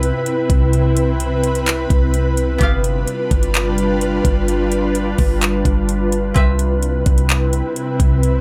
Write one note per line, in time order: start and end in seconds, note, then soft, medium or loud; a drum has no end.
0.00 0.12 C2 loud
0.00 2.57 C3 medium
0.00 2.57 C4 medium
0.00 2.57 E4 medium
0.00 0.71 B4 loud
0.00 2.57 B4 medium
0.00 2.57 E5 medium
0.00 closed hi-hat medium
0.26 closed hi-hat medium
0.50 1.86 C2 loud
0.50 kick medium
0.50 closed hi-hat medium
0.73 2.59 B4 loud
0.73 closed hi-hat medium
0.97 closed hi-hat medium
1.20 closed hi-hat medium
1.44 closed hi-hat medium
1.55 closed hi-hat medium
1.67 clap loud
1.67 closed hi-hat medium
1.90 2.58 C2 loud
1.90 kick loud
1.90 closed hi-hat medium
2.14 closed hi-hat medium
2.37 closed hi-hat medium
2.58 3.06 G1 loud
2.58 6.32 G3 medium
2.58 6.32 B3 medium
2.58 6.32 D4 medium
2.58 6.32 F4 medium
2.58 6.32 G4 medium
2.58 6.32 B4 loud
2.58 kick loud
2.58 closed hi-hat medium
2.63 6.32 F5 medium
2.84 closed hi-hat medium
3.08 closed hi-hat medium
3.31 4.21 G1 loud
3.31 kick loud
3.31 closed hi-hat medium
3.43 closed hi-hat medium
3.54 clap loud
3.54 closed hi-hat medium
3.78 closed hi-hat medium
4.01 closed hi-hat medium
4.25 5.15 G1 loud
4.25 kick medium
4.25 closed hi-hat medium
4.48 closed hi-hat medium
4.72 closed hi-hat medium
4.95 closed hi-hat medium
5.18 5.64 G1 loud
5.18 kick medium
5.18 open hi-hat medium
5.42 clap loud
5.42 closed hi-hat medium
5.65 6.33 G1 loud
5.65 kick loud
5.65 closed hi-hat medium
5.89 closed hi-hat medium
6.12 closed hi-hat medium
6.34 7.03 C2 loud
6.34 8.41 C3 medium
6.34 8.41 C4 medium
6.34 8.41 E4 medium
6.34 8.41 B4 loud
6.34 8.41 B4 medium
6.34 8.41 E5 medium
6.34 kick loud
6.34 closed hi-hat medium
6.59 closed hi-hat medium
6.83 closed hi-hat medium
7.06 7.62 C2 loud
7.06 kick medium
7.06 closed hi-hat medium
7.18 closed hi-hat medium
7.29 clap loud
7.29 closed hi-hat medium
7.53 closed hi-hat medium
7.76 closed hi-hat medium
8.00 8.41 C2 loud
8.00 kick medium
8.00 closed hi-hat medium
8.23 closed hi-hat medium